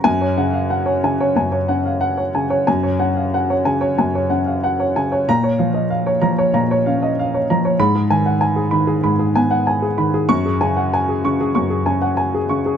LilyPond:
<<
  \new Staff \with { instrumentName = "Grand piano" } { \time 4/4 \key fis \major \tempo 4 = 94 r16 cis''16 fis''16 eis''16 fis''16 cis''16 gis''16 cis''16 gis''16 cis''16 fis''16 eis''16 fis''16 cis''16 gis''16 cis''16 | gis''16 cis''16 fis''16 eis''16 fis''16 cis''16 gis''16 cis''16 gis''16 cis''16 fis''16 eis''16 fis''16 cis''16 gis''16 cis''16 | r16 cis''16 eis''16 dis''16 eis''16 cis''16 ais''16 cis''16 ais''16 cis''16 eis''16 dis''16 eis''16 cis''16 ais''16 cis''16 | r16 gis'16 gis''16 fis''16 gis''16 gis'16 b''16 gis'16 b''16 gis'16 gis''16 fis''16 gis''16 gis'16 b''16 gis'16 |
r16 gis'16 gis''16 fis''16 gis''16 gis'16 cis'''16 gis'16 cis'''16 gis'16 gis''16 fis''16 gis''16 gis'16 cis'''16 gis'16 | }
  \new Staff \with { instrumentName = "Grand piano" } { \clef bass \time 4/4 \key fis \major <fis, gis''>8 cis4 cis8 fis,8 cis'4 cis8 | fis,8 cis'4 cis8 fis,8 cis'4 cis8 | <ais, ais''>8 eis4 eis8 ais,8 cis'4 eis8 | <gis, b''>8 dis4 dis8 gis,8 b4 dis8 |
<fis, cis'''>8 cis4 cis8 fis,8 cis'4 cis8 | }
>>